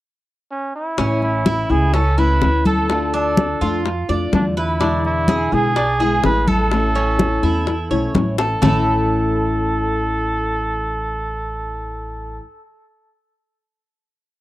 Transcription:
0.51 C#4
0.75 E4
0.97 A1 E3 A3 C#4 E4, high bongo, high conga
1.22 E4, high conga
1.46 E4, high bongo, high conga
1.70 C#2 A3 C#4 E4 G#4
1.94 C#4 A4, muted nylon-string guitar stroke, high bongo, high conga
2.18 A3 C#4 E4 B4, high conga
2.41 D2 E3 A3 C#4 E4, high bongo, low bongo, high conga
2.65 A4, high conga
2.89 D3 A3 D4 F4, high bongo, high conga
3.14 D4 A4, high conga
3.37 high bongo, high conga
3.61 F2 A3 D4 F4, high bongo, high conga
3.85 muted nylon-string guitar stroke, high bongo, high conga
4.09 F2 A3 D4 F4 D5, high bongo, high conga
4.32 E2 D3 A3 D4 F4, high bongo, low bongo, high conga
4.57 E4 B4, high bongo, high conga
4.80 B2 D3 G#3 B3 D4 E4, high bongo, high conga
5.05 E4, high conga
5.28 G#4, high bongo, high conga
5.52 B1 D3 G#3 B3 E4 G#4
5.76 D4, muted nylon-string guitar stroke, high bongo, high conga
6.00 D3 G#3 B3 E4 G#4, high conga
6.24 A1 D3 G#3 B3 E4 B4, high bongo, low bongo, high conga
6.48 A4, high conga
6.71 E3 A3 C#4 E4, high bongo, high conga
6.95 C#4, high conga
7.19 high bongo, high conga
7.43 E2 A3 C#4 E4, high bongo, high conga
7.67 muted nylon-string guitar stroke, high bongo, high conga
7.91 B1 A3 C#4 E4 C#5, high bongo, high conga
8.14 A1 E3 A3 C#4 E4, high bongo, low bongo, high conga
8.38 A4, high bongo, high conga
8.62 A1 A2 E3 A3 C#4 E4 A4, low bongo, low conga

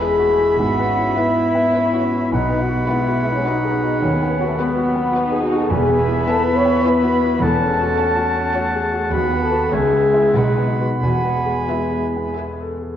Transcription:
Already playing: E2 G#3 E5 B5
0.00 B3 E4 G#4 B4 E5 G#5
0.19 F#4
0.29 A3
0.39 E4
0.58 G#1 G#2 B3 F#4 F#5
0.79 B3
0.88 C#4
0.98 E4
1.16 B3 E4 B4 E5
1.35 E4
1.55 B3
1.74 C#4 E4 B4 E5
1.93 F#4
2.12 E4
2.31 B1 B2 B3 D#4 D#5 F#5 B5
2.49 B3
2.59 F#4 F#5
2.69 F#4
2.87 G#3 B3 E4 B4 E5 F#5
3.08 F#4
3.26 B3
3.31 C#4 C#5
3.44 F#3 D#4 F#4 B4 D#5 F#5
3.64 G#4
3.73 B3
3.83 F#4
4.01 D#2 C#4 C#5
4.22 B3
4.40 F#4
4.45 A3 A4
4.58 G#3 B3 B4 F#5
4.77 F#4
4.87 F#3
4.96 B3
5.12 D#4 F#4 B4 F#5
5.32 G#4
5.42 F#4 F#5
5.52 F#4
5.57 A4 A5
5.70 E1 E2 B3 G#4 E5 G#5 B5
5.89 B3
6.07 E4
6.27 B3 A4 B4 E5 G#5 A5
6.43 E4 B4 B5
6.56 C#5 C#6
6.65 B3
6.84 E4 B4 E5 G#5 B5
7.03 F#4
7.24 E4
7.41 E1 E2 A3 A4 F#5 A5
7.61 C#4
7.71 G#3
7.81 F#4
7.98 A3 C#4 C#5 F#5
8.16 F#4
8.36 C#4
8.55 F#4 C#5 F#5
8.75 G#4
8.94 F#4
9.12 D#2 B3 F#4 B4 F#5 B5
9.33 B3
9.42 A4 A5
9.51 F#4 B4
9.71 C#2 C#3 G#3 G#4 C#5 E5 G#5
9.92 G#3
10.14 E4 E5
10.34 B1 B2 D#4 B4 D#5 F#5 B5
10.58 B3
10.68 F#4 F#5
10.79 F#4 B4
11.01 E1 E2 G#3 F#4 F#5 G#5
11.24 B3
11.46 G#4
11.68 B3 E4 B4 E5 G#5
11.91 G#4
12.16 B3
12.37 G#4 B4 E5 G#5
12.61 A4
12.81 G#4

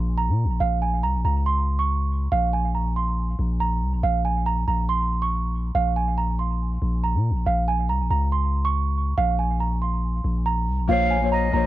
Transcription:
Already playing: A#1 C6
0.18 A#5
0.29 A#2
0.45 A#1
0.60 A#1 F5
0.82 G#5
1.03 C2 A#5
1.15 A#1
1.25 C#2 A#5
1.46 C6
1.79 C#6
2.32 A#1 F5
2.53 G#5
2.75 A#5
2.96 C6
3.39 A#1
3.60 A#5
3.82 C2
3.93 A#1
4.03 A#1 F5
4.25 G#5
4.46 A#5
4.67 A#1 A#5
4.89 C6
5.22 C#6
5.75 A#1 F5
5.96 G#5
6.18 A#5
6.39 C6
6.82 A#1
7.04 A#5
7.15 A#2
7.30 A#1
7.46 A#1 F5
7.68 G#5
7.89 C2 A#5
8.00 A#1
8.10 C#2 A#5
8.32 C6
8.65 C#6
9.18 A#1 F5
9.39 G#5
9.60 A#5
9.82 C6
10.25 A#1
10.46 A#5
10.68 C2
10.79 A#1
10.87 A#1 A#3 F4 C5 C#5 F5
11.11 G#5
11.20 A#3 F4 C5 C#5
11.32 D#5 A#5
11.51 A#1 A#3 F4 C5 C#5 A#5

